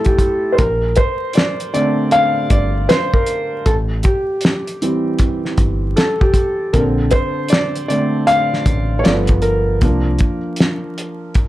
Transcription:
Already playing: G3 A3 E4 F4 A4
0.05 G4, kick, closed hi-hat
0.19 kick, closed hi-hat
0.53 C5
0.58 A#1 A#4, kick, closed hi-hat
0.96 C5, kick, closed hi-hat
1.33 D5, closed hi-hat
1.38 snare
1.60 closed hi-hat
1.74 D3 A3 C4 D5, closed hi-hat
2.11 F5, closed hi-hat
2.50 G1 D5, kick, closed hi-hat
2.89 C5, snare, closed hi-hat
3.13 A#4, kick
3.26 closed hi-hat
3.66 A1 A4, kick, closed hi-hat
4.03 G4, kick, closed hi-hat
4.41 closed hi-hat
4.45 snare
4.67 closed hi-hat
4.82 E3 G3 C4, closed hi-hat
5.19 kick, closed hi-hat
5.45 snare
5.58 G1, kick, closed hi-hat
5.96 A4, snare, closed hi-hat
6.21 G4, kick
6.34 kick, closed hi-hat
6.73 A#1 D3 C4 A4 A#4, kick, closed hi-hat
7.11 C5, kick, closed hi-hat
7.49 D5, closed hi-hat
7.53 snare
7.75 closed hi-hat
7.88 D3 A3 C4 D5, closed hi-hat
8.27 F5, closed hi-hat
8.54 snare
8.66 A1, kick, closed hi-hat
8.99 C#5
9.04 G1 F3 B3 A4 D5, snare, closed hi-hat
9.27 kick, closed hi-hat
9.42 A#4, closed hi-hat
9.81 C2 F3 A#3 D4, kick, closed hi-hat
10.19 kick, closed hi-hat
10.56 closed hi-hat
10.60 snare
10.98 closed hi-hat
11.34 kick, closed hi-hat

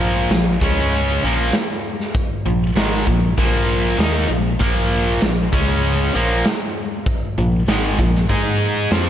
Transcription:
Already playing: A#1 A#2 F3 A#3
0.30 A#1 A#2 F3, snare, open hi-hat
0.61 C#2 C#3 G#3 C#4, kick
0.77 snare
0.92 open hi-hat
1.24 A#1 A#2 F3 A#3
1.52 snare, open hi-hat
2.00 snare
2.14 kick, open hi-hat
2.46 A#1 A#2 F3
2.76 G#1 G#2 D#3 G#3, snare, open hi-hat
3.07 A#1 A#2 F3, kick
3.38 A#1 A#2 F3 A#3, kick, open hi-hat
3.98 D#2 D#3 A#3 D#4, snare, open hi-hat
4.29 A#1 A#2 F3
4.59 A#1 A#2 F3 A#3, kick, open hi-hat
5.21 A#1 A#2 F3, snare, open hi-hat
5.52 C#2 C#3 G#3 C#4, kick
5.83 open hi-hat
6.13 A#1 A#2 F3 A#3
6.45 snare, open hi-hat
7.06 kick, open hi-hat
7.38 A#1 A#2 F3
7.68 G#1 G#2 D#3 G#3, snare, open hi-hat
7.99 A#1 A#2 F3, kick
8.15 snare
8.29 G#2 G#3 D#4 G#4, kick, open hi-hat
8.91 F2 F3 C4 F4, snare, open hi-hat

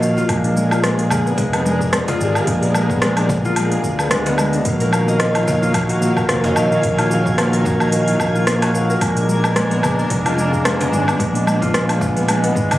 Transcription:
Already playing: A#1 D#3 F#3 A#3 F4 A#4 D#5 F5
0.01 A#3, cajon slap, cabasa
0.17 F4, cajon slap, cabasa
0.29 A#1 G#3 D4 G#4 A#4, kick, open hi-hat, cabasa, low woodblock
0.44 D4, open hi-hat
0.56 G#3, cabasa
0.71 F4, cabasa, low woodblock
0.84 G#3, cross-stick, open hi-hat, cabasa
0.99 G#4, open hi-hat
1.10 G#3, cajon bass, cabasa, low woodblock
1.26 B3, cabasa
1.38 F1 G#3, kick, cajon slap, open hi-hat, cabasa
1.53 B3, open hi-hat, low woodblock
1.65 G#3, cabasa
1.81 D4, kick, cabasa
1.93 G#3, cross-stick, open hi-hat, cabasa, low woodblock
2.08 F4, cajon bass, cajon slap, open hi-hat
2.20 G#1 G#3, cabasa
2.35 G#4, cabasa, low woodblock
2.47 A#1 G#3, kick, open hi-hat, cabasa
2.62 B3, cajon slap, open hi-hat
2.74 G#3, cabasa, low woodblock
2.90 B3, kick, cabasa
3.02 G#3, cross-stick, open hi-hat, cabasa
3.17 D4, open hi-hat, low woodblock
3.29 G#3, kick, cajon bass, cajon slap, cabasa
3.45 F4, cabasa
3.56 G#3, open hi-hat, cabasa, low woodblock
3.72 G#4, open hi-hat
3.84 D2 G#3, kick, cabasa
3.99 B3, cabasa, low woodblock
4.11 D2 G#3, cross-stick, open hi-hat, cabasa
4.26 B3, cajon slap, open hi-hat
4.38 G#3, cajon slap, cabasa, low woodblock
4.53 D4, cajon slap, open hi-hat, cabasa
4.65 A#1 D#3 F#3 A#3 G#4 F5 G#5, kick, open hi-hat, cabasa
4.80 A#4, open hi-hat
4.93 A#3, cabasa, low woodblock
5.08 D#5, cabasa
5.20 A#3, cross-stick, open hi-hat, cabasa
5.35 F4, open hi-hat, low woodblock
5.47 A#3, cajon bass, cabasa
5.62 F4, cabasa
5.74 A#3, kick, cajon slap, open hi-hat, cabasa, low woodblock
5.89 F#4, open hi-hat
6.01 A#3, cabasa
6.17 A#4, kick, cabasa, low woodblock
6.29 F1 A#3, cross-stick, open hi-hat, cabasa
6.44 D#5, cajon bass, cajon slap, open hi-hat
6.56 A#1 A#3, cabasa, low woodblock
6.71 F4, cabasa
6.83 A#1 A#3, kick, open hi-hat, cabasa
6.99 F4, cajon slap, open hi-hat, low woodblock
7.11 A#3, cabasa
7.26 F#4, kick, cabasa
7.38 A#3, cross-stick, open hi-hat, cabasa, low woodblock
7.53 A#4, open hi-hat
7.65 A#3, kick, cajon bass, cajon slap, cabasa
7.80 D#5, cabasa, low woodblock
7.92 A#3, open hi-hat, cabasa
8.08 F4, open hi-hat
8.20 A#1 A#3, kick, cabasa, low woodblock
8.35 F4, cabasa
8.47 A#3, cross-stick, open hi-hat, cabasa
8.62 F#4, cajon slap, open hi-hat, low woodblock
8.74 A#3, cajon slap, cabasa
8.90 A#4, cajon slap, cabasa
9.01 A#1 G#3 D4 A#4, kick, open hi-hat, cabasa, low woodblock
9.17 G#4, open hi-hat
9.28 G#3, cabasa
9.44 B3, cabasa, low woodblock
9.56 G#3, cross-stick, open hi-hat, cabasa
9.71 B3, open hi-hat
9.83 G#3, cajon bass, cabasa, low woodblock
9.98 D4, cabasa
10.10 F1 G#3, kick, cajon slap, open hi-hat, cabasa
10.25 F4, open hi-hat, low woodblock
10.37 G#3, cabasa
10.53 G#4, kick, cabasa
10.65 G#3, cross-stick, open hi-hat, cabasa, low woodblock
10.80 B3, cajon bass, cajon slap, open hi-hat
10.92 G#1 G#3, cabasa
11.07 B3, cabasa, low woodblock
11.19 A#1 G#3 B3, kick, open hi-hat, cabasa
11.34 D4, cajon slap, open hi-hat
11.47 G#3, cabasa, low woodblock
11.61 F4, kick, open hi-hat, cabasa
11.74 G#3, cross-stick, open hi-hat, cabasa
11.89 G#4, open hi-hat, low woodblock
12.01 G#3, cajon bass, kick, cajon slap, cabasa
12.16 B3, open hi-hat, cabasa
12.28 G#3, open hi-hat, cabasa, low woodblock
12.43 B3, open hi-hat
12.55 G#1 G#3, kick, cabasa
12.71 D4, cajon bass, open hi-hat, cabasa, low woodblock

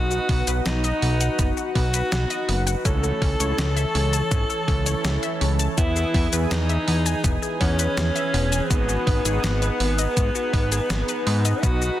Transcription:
Already playing: B1 B3 D#4 F#4 B4 D#5 F#5
0.11 F#4, shaker
0.29 B1 B3, kick, open hi-hat
0.47 B1 B3 D#4 F#4 B4 D#5, closed hi-hat, shaker
0.66 B1 B3 D#4, snare, closed hi-hat, shaker
0.84 D#5, closed hi-hat, shaker
1.02 B1 B3, open hi-hat
1.21 F#5, closed hi-hat, shaker
1.39 F#1 B3, kick, closed hi-hat, shaker
1.57 F#4, shaker
1.75 B1 B3 F#4, kick, open hi-hat
1.94 B4, closed hi-hat, shaker
2.12 B1 B3, snare, closed hi-hat, shaker
2.30 D#5, closed hi-hat, shaker
2.48 F#1 B3, open hi-hat
2.67 F#5, closed hi-hat, shaker
2.85 C#2 E3 A3 C#4 E4 A4 C#5 A5, kick, closed hi-hat, shaker
3.03 A4, shaker
3.22 C#2 C#4, kick, open hi-hat
3.40 C#2 A3 C#4 E4 A4 C#5, closed hi-hat, shaker
3.58 C#2 C#4, snare, closed hi-hat, shaker
3.76 E5, closed hi-hat, shaker
3.95 C#2 C#4, open hi-hat
4.13 A5, closed hi-hat, shaker
4.31 G#1 C#4, kick, closed hi-hat, shaker
4.49 A4, shaker
4.68 C#2 C#4, kick, open hi-hat
4.86 A3 C#4 E4 A4 C#5, closed hi-hat, shaker
5.04 C#2 C#4, snare, closed hi-hat, shaker
5.23 E5, closed hi-hat, shaker
5.41 C#2 C#4, open hi-hat
5.59 A5, closed hi-hat, shaker
5.78 E2 B3 E4 G#4 B4 E5 G#5, kick, closed hi-hat, shaker
5.96 G#4, shaker
6.14 E2 B3, kick, open hi-hat
6.33 E2 B3 E4 G#4 B4 E5, closed hi-hat, shaker
6.51 E2 B3 D#4, snare, closed hi-hat, shaker
6.69 E5, closed hi-hat, shaker
6.87 E2 B3, open hi-hat
7.06 G#5, closed hi-hat, shaker
7.24 E1 B3, kick, closed hi-hat, shaker
7.42 G#4, shaker
7.61 E2 B3 C#4, kick, open hi-hat
7.79 B4, closed hi-hat, shaker
7.97 E2 B3, snare, closed hi-hat, shaker
8.15 E5, closed hi-hat, shaker
8.34 E1 B3, open hi-hat
8.52 G#5, closed hi-hat, shaker
8.70 G#1 B3 D#4 F#4 G#4 B4 D#5 F#5, kick, closed hi-hat, shaker
8.89 F#4, shaker
9.07 G#1 B3, kick, open hi-hat
9.25 G#1 D#4 F#4 G#4 B4 D#5, closed hi-hat, shaker
9.43 G#1 B3, snare, closed hi-hat, shaker
9.62 B4, closed hi-hat, shaker
9.80 G#1 B3, open hi-hat
9.98 D#5, closed hi-hat, shaker
10.17 G#2 B3, kick, closed hi-hat, shaker
10.35 F#4, shaker
10.53 G#1 B3, kick, open hi-hat
10.72 G#4, closed hi-hat, shaker
10.90 G#1 B3, snare, closed hi-hat, shaker
11.08 B4, closed hi-hat, shaker
11.26 G#2 B3, open hi-hat
11.45 D#5, closed hi-hat, shaker
11.63 B1 B3 D#4 F#4 B4 D#5 F#5, kick, closed hi-hat, shaker
11.81 F#4, shaker

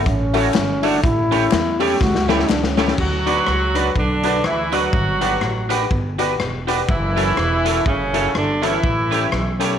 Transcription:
0.06 A1 C#4, kick, hi-hat pedal
0.33 A3 E4 F#4 A4 C#5, open hi-hat
0.54 G1, snare, clap, hi-hat pedal
0.82 A3 D4 E4 F#4 A4 C#5, open hi-hat
1.03 A1 E4, kick, hi-hat pedal
1.31 A3 C#4 E4 G4 A4 C#5, open hi-hat
1.52 E2, muted clean electric guitar stroke, snare, clap, hi-hat pedal
1.79 A3 C#4 E4 G4 A4 C#5, open hi-hat
2.01 C#2 F#4, kick, snare
2.15 snare
2.28 A3 C#4 E4 G4 A4 C#5, snare
2.39 snare
2.49 C#2 D4, snare, clap
2.63 C#4, snare
2.77 A3 C#4 E4 G4 A4 C#5, snare
2.88 snare
2.98 D2 F#3 F#4, kick, crash
3.26 D4 F#4 B4 D5, closed hi-hat
3.47 C#2, muted clean electric guitar stroke, cross-stick
3.74 D4 F#4 B4 D5, closed hi-hat
3.96 B1 D3 D4, kick
4.24 D4 F#4 B4 D5, closed hi-hat
4.44 D2 E3 E4, cross-stick
4.72 F#3 D4 F#4 B4 D5, closed hi-hat
4.93 G1, kick
5.21 D4 F#4 G4 B4 D5, closed hi-hat
5.41 A1, muted clean electric guitar stroke, cross-stick
5.69 D4 F#4 G4 B4 D5, closed hi-hat
5.91 G1, kick
6.18 D4 F#4 G4 B4 D5, closed hi-hat
6.40 E1, cross-stick
6.67 D4 F#4 G4 B4 D5, closed hi-hat
6.89 F#1 E3 E4, kick
7.16 C#4 E4 F#4 A4 C#5, closed hi-hat
7.37 E1, muted clean electric guitar stroke, cross-stick
7.64 C#4 E4 F#4 A4 C#5, closed hi-hat
7.86 F#1 C#3 C#4, kick
8.13 C#4 E4 F#4 A4 C#5, closed hi-hat
8.35 G1 D3 D4, cross-stick
8.62 E3 C#4 E4 F#4 A4 C#5, closed hi-hat
8.83 A1, kick
9.10 A3 C#4 E4 G4 A4 C#5, closed hi-hat
9.32 B1, muted clean electric guitar stroke, cross-stick
9.59 A3 C#4 E4 G4 A4 C#5, closed hi-hat

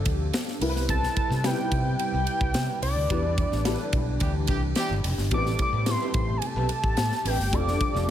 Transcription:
Already playing: F3 G3 C4 D4 F4 G4 A4
0.05 D2, kick, ride
0.33 snare, ride
0.48 snare
0.61 C2 C3 G3 B3 C4 E4 A#4 B4, open hi-hat, ride
0.69 B4
0.76 snare
0.89 A5, kick, hi-hat pedal, ride
1.04 snare
1.16 kick, ride
1.30 C3, snare
1.44 G3 B3 C4 D#4 B4 G5, snare, ride
1.51 E4
1.71 C3, kick, ride
1.99 G5, ride
2.14 C2
2.27 ride
2.41 C2, kick
2.54 C3, snare, ride
2.82 C2 D5, open hi-hat, ride
2.96 D2
3.10 E2 E3 G3 B3 D4 E4 G4 B4, kick, ride
3.38 kick, ride
3.52 A1, snare
3.65 G3 B3 D4 E4 A4, snare, ride
3.73 B4
3.93 B1, kick, ride
4.20 D2 E3 G3 D4 G4, kick, ride
4.47 C2 E3 G3 D4 G4, kick, ride
4.75 E3 G3 D4 G4, snare, ride
4.90 G1
5.04 F1, open hi-hat, ride
5.18 G1, snare
5.31 A1 C3 G3 A3 B3 C4 E4 G4 A4 B4 D6, kick, hi-hat pedal, ride
5.46 snare
5.59 D6, muted clean electric guitar stroke, kick, ride
5.73 A2 C4 G4 B4
5.86 G3 B3 C4 E4 A4 C6, muted clean electric guitar stroke, snare, ride
6.01 C4 G4 B4
6.14 A1, muted clean electric guitar stroke, kick, ride
6.29 muted clean electric guitar stroke
6.37 G#5
6.42 A5, muted clean electric guitar stroke, ride
6.56 B1 C4 G4 B4
6.69 muted clean electric guitar stroke, ride
6.83 A1, muted clean electric guitar stroke, kick
6.97 A2, snare, ride
7.11 muted clean electric guitar stroke, snare
7.25 A1 C4 G4 B4 G5, open hi-hat, ride
7.39 G1, muted clean electric guitar stroke, snare
7.52 F1 F3 G3 C4 D4 F4 G4 A4 D5 D6, kick, hi-hat pedal, ride
7.68 snare
7.80 muted clean electric guitar stroke, kick, ride
7.93 F1 G4 A4 D5, snare

